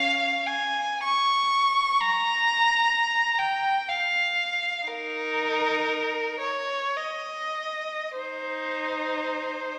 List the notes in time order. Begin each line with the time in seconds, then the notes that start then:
Already playing: C#4 F5
0.46 G#5
1.03 C#6
2.01 A#5
3.39 G5
3.89 F5
4.87 D#4 A#4
6.40 C#5
6.96 D#5
8.19 D#4 C5